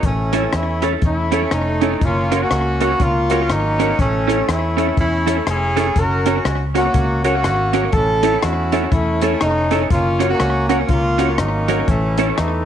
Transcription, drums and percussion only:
0.03 kick, closed hi-hat
0.33 closed hi-hat
0.53 cross-stick, closed hi-hat
0.82 closed hi-hat
1.02 kick, closed hi-hat
1.32 closed hi-hat
1.51 cross-stick, closed hi-hat
1.81 closed hi-hat
2.01 kick, closed hi-hat
2.32 closed hi-hat
2.51 cross-stick, closed hi-hat
2.81 closed hi-hat
3.00 kick, closed hi-hat
3.30 closed hi-hat
3.50 cross-stick, closed hi-hat
3.80 closed hi-hat
3.99 kick, closed hi-hat
4.29 closed hi-hat
4.49 cross-stick, closed hi-hat
4.78 closed hi-hat
4.97 kick, closed hi-hat
5.27 closed hi-hat
5.47 cross-stick, closed hi-hat
5.77 closed hi-hat
5.96 kick, closed hi-hat
6.26 closed hi-hat
6.45 cross-stick, closed hi-hat
6.75 closed hi-hat
6.94 kick, closed hi-hat
7.24 closed hi-hat
7.44 cross-stick, closed hi-hat
7.73 closed hi-hat
7.92 kick, closed hi-hat
8.23 closed hi-hat
8.43 cross-stick, closed hi-hat
8.72 closed hi-hat
8.92 kick, closed hi-hat
9.21 closed hi-hat
9.41 cross-stick, closed hi-hat
9.71 closed hi-hat
9.90 kick, closed hi-hat
10.20 closed hi-hat
10.40 cross-stick, closed hi-hat
10.70 closed hi-hat
10.89 kick, closed hi-hat
11.19 closed hi-hat
11.38 cross-stick, closed hi-hat
11.68 closed hi-hat
11.88 kick, closed hi-hat
12.18 closed hi-hat
12.38 cross-stick, closed hi-hat

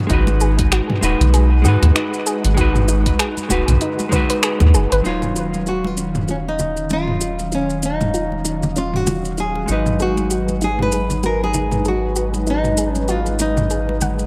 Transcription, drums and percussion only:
0.10 kick, closed hi-hat, shaker
0.27 muted conga, shaker
0.41 shaker
0.58 kick, closed hi-hat, high conga, shaker
0.72 finger snap, closed hi-hat, muted conga, shaker
0.90 mid tom, high conga
1.03 shaker
1.21 closed hi-hat, low conga, shaker
1.34 closed hi-hat, muted conga, shaker
1.64 low conga, shaker
1.83 finger snap, closed hi-hat, mid tom, muted conga, shaker
1.96 finger snap, closed hi-hat, shaker
2.14 shaker
2.27 shaker
2.44 closed hi-hat, muted conga, shaker
2.58 kick, closed hi-hat, shaker
2.76 mid tom, shaker
2.88 muted conga, shaker
3.06 kick, closed hi-hat, high conga, shaker
3.19 finger snap, closed hi-hat, shaker
3.37 high conga, shaker
3.50 kick, muted conga, shaker
3.68 closed hi-hat, mid tom, low conga, shaker
3.81 closed hi-hat, shaker
3.99 muted conga, shaker
4.12 kick, high conga, low conga, shaker
4.30 closed hi-hat, shaker
4.43 finger snap, closed hi-hat, shaker
4.60 mid tom, muted conga, shaker
4.74 shaker
4.92 closed hi-hat, shaker
5.05 shaker
5.22 mid tom, muted conga, shaker
5.36 shaker
5.53 high conga, shaker
5.67 shaker
5.84 muted conga, high conga
5.97 shaker
6.15 mid tom, low conga, shaker
6.28 muted conga, shaker
6.59 low conga, shaker
6.77 shaker
6.90 muted conga, shaker
7.08 mid tom
7.21 shaker
7.39 muted conga, shaker
7.52 shaker
7.70 shaker
7.83 shaker
8.01 mid tom, muted conga, high conga, shaker
8.14 shaker
8.32 high conga
8.45 muted conga, shaker
8.63 low conga, shaker
8.76 shaker
8.94 mid tom
9.07 muted conga, low conga, shaker
9.25 shaker
9.38 shaker
9.55 muted conga
9.68 shaker
9.86 mid tom, shaker
10.00 shaker
10.17 muted conga, shaker
10.31 shaker
10.48 high conga, shaker
10.61 muted conga, shaker
10.79 mid tom, high conga
10.92 shaker
11.10 low conga, shaker
11.23 muted conga, shaker
11.54 low conga, shaker
11.71 mid tom, muted conga, shaker
11.85 shaker
12.16 shaker
12.34 muted conga, shaker
12.47 shaker
12.64 mid tom, shaker
12.77 muted conga, shaker
12.95 high conga, shaker
13.08 shaker
13.26 high conga, shaker
13.39 muted conga, shaker
13.57 mid tom, low conga, shaker
13.70 shaker
13.89 muted conga
14.01 high conga, low conga, shaker
14.19 shaker

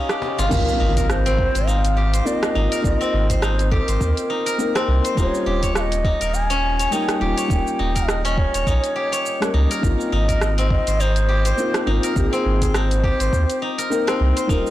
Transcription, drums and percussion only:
0.09 cross-stick, cabasa
0.22 cajon slap
0.39 cajon slap, cabasa
0.51 kick, crash, cabasa
0.68 cabasa
0.97 kick, closed hi-hat, cabasa
1.10 cross-stick, cabasa
1.26 closed hi-hat, cabasa
1.39 kick
1.55 closed hi-hat, cabasa
1.69 cabasa
1.85 closed hi-hat, cabasa
2.14 closed hi-hat, cabasa
2.27 cabasa
2.43 cross-stick, closed hi-hat, cabasa
2.72 closed hi-hat, cabasa
2.84 kick, cabasa
3.02 cabasa
3.30 kick, closed hi-hat, cabasa
3.42 cross-stick, cabasa
3.59 closed hi-hat, cabasa
3.72 kick
3.88 closed hi-hat, cabasa
4.01 kick, cabasa
4.17 closed hi-hat, cabasa
4.47 closed hi-hat, cabasa
4.59 cabasa
4.76 cross-stick, closed hi-hat, cabasa
5.05 closed hi-hat, cabasa
5.17 kick, cabasa
5.35 cabasa
5.63 kick, closed hi-hat, cabasa
5.75 cross-stick, cabasa
5.92 closed hi-hat, cabasa
6.05 kick
6.21 closed hi-hat, cabasa
6.34 cabasa
6.50 closed hi-hat, cabasa
6.79 closed hi-hat, cabasa
6.92 cabasa
7.09 cross-stick, closed hi-hat, cabasa
7.38 closed hi-hat, cabasa
7.50 kick, cabasa
7.67 cabasa
7.96 kick, closed hi-hat, cabasa
8.09 cross-stick, cabasa
8.25 closed hi-hat, cabasa
8.38 kick
8.54 closed hi-hat, cabasa
8.67 kick, cabasa
8.84 closed hi-hat, cabasa
9.13 closed hi-hat, cabasa
9.26 cabasa
9.42 cross-stick, closed hi-hat, cabasa
9.71 closed hi-hat, cabasa
9.83 kick, cabasa
10.01 cabasa
10.29 kick, closed hi-hat, cabasa
10.41 cross-stick, cabasa
10.58 closed hi-hat, cabasa
10.71 kick
10.87 closed hi-hat, cabasa
11.00 cabasa
11.16 closed hi-hat, cabasa
11.45 closed hi-hat, cabasa
11.58 cabasa
11.74 cross-stick, closed hi-hat, cabasa
12.03 closed hi-hat, cabasa
12.16 kick, cabasa
12.33 cabasa
12.62 kick, closed hi-hat, cabasa
12.74 cross-stick, cabasa
12.91 closed hi-hat, cabasa
13.04 kick
13.20 closed hi-hat, cabasa
13.33 kick, cabasa
13.50 closed hi-hat, cabasa
13.79 closed hi-hat, cabasa
13.92 cabasa
14.08 cross-stick, closed hi-hat, cabasa
14.37 closed hi-hat, cabasa
14.49 kick, cabasa
14.67 cabasa

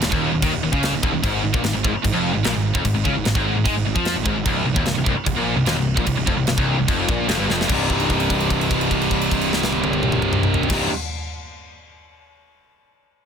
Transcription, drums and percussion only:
0.02 snare, crash
0.12 kick
0.42 kick, crash
0.73 kick
0.83 snare, crash
1.03 kick
1.24 kick, crash
1.54 kick
1.64 snare, crash
1.84 kick
2.04 kick, crash
2.44 snare, crash
2.75 kick
2.85 kick, crash
3.05 kick
3.25 snare, crash
3.35 kick
3.66 kick, crash
3.96 kick
4.05 snare, crash
4.26 kick
4.45 kick, crash
4.76 kick
4.86 snare, crash
5.06 kick
5.26 kick, crash
5.66 snare, crash
5.97 kick
6.06 kick, crash
6.27 kick
6.47 snare, crash
6.58 kick
6.88 kick, crash
7.09 kick
7.29 snare, crash
7.50 snare
7.61 snare
7.69 kick, crash
7.90 kick, crash
8.00 crash
8.10 kick, crash
8.20 crash
8.30 kick, crash
8.40 crash
8.50 kick, crash
8.61 crash
8.71 kick, crash
8.81 crash
8.91 kick, crash
9.01 crash
9.11 kick, crash
9.21 crash
9.31 kick, crash
9.41 crash
9.53 snare
9.63 snare
9.72 high tom
9.84 high tom
9.93 high tom
10.03 mid tom
10.12 mid tom
10.22 mid tom
10.33 mid tom
10.43 mid tom
10.54 floor tom
10.63 floor tom
10.70 kick, snare, crash

